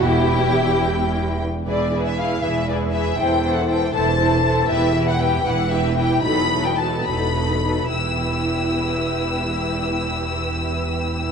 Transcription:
<<
  \new Staff \with { instrumentName = "Violin section" } { \time 6/8 \key e \minor \tempo 4. = 75 g''2~ g''8 r8 | d''8. e''16 f''8 e''8 d''8 e''8 | g''8. fis''16 g''8 a''4. | e''8. fis''16 g''8 fis''8 e''8 g''8 |
b''8. g''16 a''8 b''4. | e'''2.~ | e'''2. | }
  \new Staff \with { instrumentName = "Violin section" } { \time 6/8 \key e \minor e'2~ e'8 r8 | <gis' b'>8 <gis' b'>8 <gis' b'>8 <gis' b'>8 <gis' b'>8 <gis' b'>8 | <a' c''>8 <a' c''>8 <a' c''>8 <a' c''>8 <a' c''>8 <a' c''>8 | <g' b'>8 <g' b'>8 <g' b'>8 <g' b'>8 <g' b'>8 <g' b'>8 |
<a' b'>8 <a' b'>8 <a' b'>8 <a' b'>8 <a' b'>8 <a' b'>8 | <g' b'>2.~ | <g' b'>2. | }
  \new Staff \with { instrumentName = "Viola section" } { \time 6/8 \key e \minor g'2~ g'16 r8. | <e e'>8 <e e'>8 <e e'>8 <e e'>8 <e e'>8 <e e'>8 | <e e'>8 <e e'>8 <e e'>8 <e e'>8 <e e'>8 <e e'>8 | <e e'>8 <e e'>8 <e e'>8 <e e'>8 <e e'>8 <e e'>8 |
<fis dis'>8 <fis dis'>8 <fis dis'>8 <fis dis'>8 <fis dis'>8 <fis dis'>8 | <e e'>2.~ | <e e'>2. | }
  \new Staff \with { instrumentName = "Cello section" } { \clef bass \time 6/8 \key e \minor e,2~ e,8 r8 | e,4. e,4. | e,4. e,4. | e,4. e,4. |
e,4. e,4. | e,2.~ | e,2. | }
  \new Staff \with { instrumentName = "Double bass section" } { \clef bass \time 6/8 \key e \minor e,,2~ e,,8 r8 | e,,4. e,,4. | e,,4. e,,4. | e,,4. e,,4. |
e,,4. e,,4. | e,,2.~ | e,,2. | }
>>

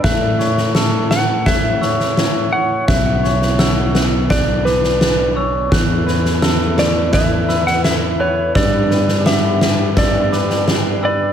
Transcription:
<<
  \new Staff \with { instrumentName = "Glockenspiel" } { \time 4/4 \key b \minor \tempo 4 = 85 fis'''4 e'''4 fis'''8 e'''4 fis'''8 | fis'''4 e'''4 fis'''8 d'''4 e'''8 | fis'''4 e'''4 fis'''8 e'''4 fis'''8 | e'''4 d'''4 e'''8 d'''4 e'''8 | }
  \new Staff \with { instrumentName = "Electric slide guitar" } { \time 4/4 \key b \minor e''4 r8 fis''8 e''4. fis''8 | e''2 d''8 b'4 r8 | r4. d''8 e''8. fis''16 e''8 cis''8 | d''4 e''4 d''4 r8 d''8 | }
  \new Staff \with { instrumentName = "Clean electric guitar" } { \time 4/4 \key b \minor a8 cis''8 a'8 a8 e'8 cis''8 e'8 cis''8 | b,8 cis''8 fis'8 b8 d'4 d'8 cis''8 | e8 b'8 a'8 a8 e'8 b'8 e'8 b'8 | g8 b'8 b8 g8 d'8 b'8 d'8 b'8 | }
  \new Staff \with { instrumentName = "Analog synth pad" } { \time 4/4 \key b \minor << { e'1~ | e'1 | <e b'>1 | g'1 | } \\ { <e a>1 | <d b>1 | <e' a'>1 | <b d'>1 | } >> }
  \new Staff \with { instrumentName = "Fingered electric bass" } { \clef bass \time 4/4 \key b \minor a,1 | b,,1 | e,1 | g,1 | }
  \new DrumStaff \with { instrumentName = "Drums" } \drummode { \time 4/4 <bd sn>8 sn16 sn16 sn8 sn8 <bd sn>8 sn16 sn16 sn4 | <bd sn>8 sn16 sn16 sn8 sn8 <bd sn>8 sn16 sn16 sn4 | <bd sn>8 sn16 sn16 sn8 sn8 <bd sn>8 sn16 sn16 sn4 | <bd sn>8 sn16 sn16 sn8 sn8 <bd sn>8 sn16 sn16 sn4 | }
>>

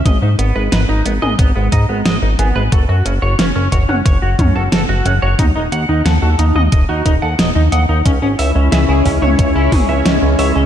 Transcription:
<<
  \new Staff \with { instrumentName = "Clean electric guitar" } { \time 4/4 \key cis \minor \tempo 4 = 90 dis''16 dis'16 b16 b'16 b'16 dis'16 b16 dis''16 b16 b16 dis''16 b16 dis''16 dis'16 b16 b'16 | a'16 fis'16 cis'16 cis''16 cis'16 cis'16 cis''16 cis'16 cis''16 fis'16 cis'16 a'16 a'16 fis'16 cis'16 cis''16 | dis'16 dis'16 fis''16 dis'16 fis''16 fis'16 dis'16 dis''16 dis''16 fis'16 dis'16 fis''16 dis'16 dis'16 fis''16 dis'16 | cis'16 cis'16 e''16 cis'16 e''16 e'16 cis'16 cis''16 cis''16 e'16 cis'16 e''16 cis'16 cis'16 e''16 cis'16 | }
  \new Staff \with { instrumentName = "Clean electric guitar" } { \time 4/4 \key cis \minor gis16 gis16 r16 gis16 dis'16 dis'16 gis16 gis'16 r16 gis16 dis'16 gis16 gis16 r16 gis'16 gis16 | fis'16 fis'16 r16 fis'16 cis''16 cis''16 fis'16 fis''16 r16 fis'16 cis''16 fis'16 fis'16 r16 fis''16 fis'16 | dis'16 dis'16 r16 dis'16 a'16 a'16 dis'16 dis''16 r16 dis'16 dis'16 a'16 dis''16 dis'16 dis''16 dis'16 | cis'16 cis'16 r16 cis'16 gis'16 gis'16 cis'16 cis''16 r16 cis'16 gis'16 cis'16 cis'16 r16 cis''16 cis'16 | }
  \new Staff \with { instrumentName = "Analog synth pad" } { \time 4/4 \key cis \minor r1 | r1 | r1 | <gis cis' e' cis''>1 | }
  \new Staff \with { instrumentName = "Analog synth bass" } { \clef bass \time 4/4 \key cis \minor gis,,16 gis,16 gis,,16 gis,,16 gis,,16 gis,,16 gis,,16 gis,,16 gis,,16 gis,,16 gis,16 gis,,16 gis,,16 gis,,16 gis,,16 gis,,16 | fis,,16 fis,16 fis,,16 fis,,16 fis,,16 fis,,16 fis,,16 fis,,16 fis,,16 fis,,16 fis,16 fis,,16 fis,,16 fis,,16 fis,,16 fis,,16 | dis,16 dis,,16 dis,16 dis,16 dis,16 dis,16 dis,16 dis,16 dis,,16 dis,16 dis,,16 dis,16 dis,,16 dis,16 dis,16 dis,16 | cis,16 gis,,16 cis,16 cis,16 cis,16 cis,16 cis,16 cis,16 cis,16 cis,16 gis,,16 cis,16 cis,16 cis,16 cis,16 cis,16 | }
  \new DrumStaff \with { instrumentName = "Drums" } \drummode { \time 4/4 <hh bd toml>8 hh8 <hh sn>8 hh16 toml16 <hh bd>8 <hh bd>8 <hh sn>8 hh8 | <hh bd>8 hh8 <hh sn>8 <hh bd>16 toml16 <hh bd>8 <hh bd toml>8 <hh sn>8 hh8 | <hh bd toml>8 hh8 <hh sn>8 hh16 toml16 <hh bd>8 <hh bd>8 <hh sn>8 hh8 | <hh bd>8 hho8 <hh sn>8 <hho bd>16 toml16 <hh bd>8 <hho bd toml>8 <hh sn>8 hho8 | }
>>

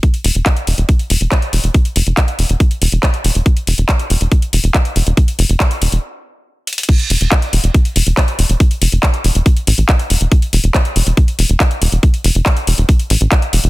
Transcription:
<<
  \new Staff \with { instrumentName = "Analog synth bass" } { \clef bass \time 4/4 \key f \lydian \tempo 4 = 140 r8 e,,16 e,,16 r8 e,,16 e,,16 r8 e,,16 e,,16 r8 e,,16 e,,16 | r8 f,,16 f,,16 r8 e,,16 e,,16 r8 e,,16 e,,16 r8 e,,16 e,,16 | r8 e,,16 e,,16 r8 e,,16 e,,16 r8 e,,16 e,,16 r8 e,,16 e,,16 | r8 f,,16 f,,16 r8 e,,16 e,,16 r2 |
r8 e,,16 e,,16 r8 e,,16 e,,16 r8 e,,16 e,,16 r8 e,,16 e,,16 | r8 f,,16 f,,16 r8 e,,16 e,,16 r8 a,,16 a,,16 r8 e,,16 e,,16 | r8 e,,16 e,,16 r8 e,,16 e,,16 r8 e,,16 e,,16 r8 e,,16 e,,16 | r8 f,,16 f,,16 r8 e,,16 e,,16 r8 a,,16 a,,16 r8 e,,16 e,,16 | }
  \new DrumStaff \with { instrumentName = "Drums" } \drummode { \time 4/4 <hh bd>16 hh16 hho16 hh16 <hc hh bd>16 hh16 hho16 hh16 <hh bd>16 hh16 hho16 hh16 <hc hh bd>16 hh16 hho16 hh16 | <hh bd>16 hh16 hho16 hh16 <hc hh bd>16 hh16 hho16 hh16 <hh bd>16 hh16 hho16 hh16 <hc hh bd>16 hh16 hho16 hh16 | <hh bd>16 hh16 hho16 hh16 <hc hh bd>16 hh16 hho16 hh16 <hh bd>16 hh16 hho16 hh16 <hc hh bd>16 hh16 hho16 hh16 | <hh bd>16 hh16 hho16 hh16 <hc hh bd>16 hh16 hho16 hh16 r4 r8 hh32 hh32 hh32 hh32 |
<cymc hh bd>16 hh16 hho16 hh16 <hc hh bd>16 hh16 hho16 hh16 <hh bd>16 hh16 hho16 hh16 <hc hh bd>16 hh16 hho16 hh16 | <hh bd>16 hh16 hho16 hh16 <hc hh bd>16 hh16 hho16 hh16 <hh bd>16 hh16 hho16 hh16 <hc hh bd>16 hh16 hho16 hh16 | <hh bd>16 hh16 hho16 hh16 <hc hh bd>16 hh16 hho16 hh16 <hh bd>16 hh16 hho16 hh16 <hc hh bd>16 hh16 hho16 hh16 | <hh bd>16 hh16 hho16 hh16 <hc hh bd>16 hh16 hho16 hh16 <hh bd>16 hh16 hho16 hh16 <hc hh bd>16 hh16 hho16 hh16 | }
>>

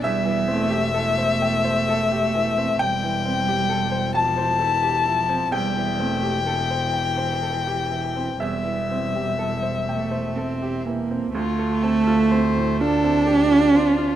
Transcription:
<<
  \new Staff \with { instrumentName = "Violin" } { \time 6/8 \key a \phrygian \tempo 4. = 43 e''2. | g''4. a''4. | g''2. | e''2~ e''8 r8 |
f'8 a'8 c''8 a'8 g'8 f'8 | }
  \new Staff \with { instrumentName = "Grand piano" } { \time 6/8 \key a \phrygian << { e''2. | g''4. a''4. | g''2. | e''2~ e''8 r8 |
r2. | } \\ { e,16 e16 c'16 g'16 a'16 c''16 g''16 c''16 a'16 g'16 e16 c'16~ | c'16 e16 c'16 g'16 a'16 c''16 g''16 c''16 a'16 g'16 e'16 c'16 | e,16 e16 c'16 g'16 a'16 c''16 g''16 c''16 a'16 g'16 e16 c'16 | e,16 e16 c'16 g'16 a'16 c''16 g''16 c''16 a'16 g'16 e16 c'16 |
d,16 a'16 c'16 f'16 c'16 a,16 f'16 c'16 a'16 f'16 c'16 f'16 | } >> }
  \new Staff \with { instrumentName = "Cello" } { \clef bass \time 6/8 \key a \phrygian g8 a8 a2 | g4. f8 e8 f8 | g8 a8 e2 | g4. a8 c'8 bes8 |
a4. d'4. | }
  \new Staff \with { instrumentName = "Double bass" } { \clef bass \time 6/8 \key a \phrygian e,,2. | e,,2. | e,,2. | e,,2. |
d,2. | }
>>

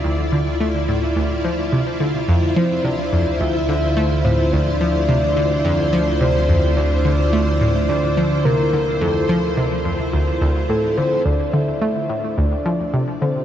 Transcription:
<<
  \new Staff \with { instrumentName = "Soft synth lead" } { \time 4/4 \key d \minor \tempo 4 = 107 r1 | r8 c''8 d''4 e''4. c''8 | d''2. c''4 | d''2 d''4 bes'4 |
a'4 r2 a'8 c''8 | d''8 e''8 e''4 d''4. c''8 | }
  \new Staff \with { instrumentName = "String machine" } { \time 4/4 \key d \minor << { d''1 | c''1~ | c''1~ | c''1~ |
c''1 | d''1 | } \\ { <e' f'>1~ | <e' f'>1~ | <e' f'>1~ | <e' f'>1~ |
<e' f'>1 | <d' f'>1 | } >> }
  \new Staff \with { instrumentName = "Synth arpeggio sound" } { \clef bass \time 4/4 \key d \minor d,8 d8 a8 a,8 d,8 f8 c8 d8 | f,8 f8 c8 f,8 d,8 d8 a8 a,8 | d,8 f8 c8 d8 f,8 f8 c8 f,8 | d,8 d8 a8 a,8 d,8 f8 c8 d8 |
f,8 f8 c8 f,8 d,8 d,8 a,8 d8 | d,8 d8 a8 a,8 d,8 f8 c8 d8 | }
  \new Staff \with { instrumentName = "Synth drone" } { \clef bass \time 4/4 \key d \minor d,1 | d,1~ | d,1~ | d,1~ |
d,1 | r1 | }
>>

